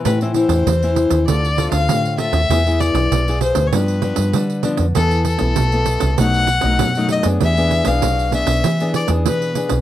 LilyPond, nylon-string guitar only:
\new Staff \with { instrumentName = "Nylon-string guitar" } { \time 4/4 \key e \phrygian \tempo 4 = 98 << { <e c' e'>16 <e c' e'>16 <e c' e'>8 r16 <e c' e'>8. <c' f' a'>16 r16 <c' f' a'>4 <c' f' a'>16 r16 | <b e' gis'>16 <b e' gis'>4 <b e' gis'>8. <f b d'>8 <f b d'>8. r16 <f b d'>16 r16 | <b e' a'>8 r16 <b e' a'>8 <b e' a'>8. <fis a dis'>8 r16 <fis a dis'>8 <fis a dis'>8 <b d' gis'>16~ | <b d' gis'>16 <b d' gis'>8 <b d' gis'>8. <b d' gis'>8 r16 <b d' gis'>8 <b d' gis'>8. <b d' gis'>16 r16 | } \\ { a,4 r4 d4 a,4 | e4 b,4 g,4 d4 | e4 b,4 b,4 fis,4 | e4 b,4 e4 b,4 | } >> }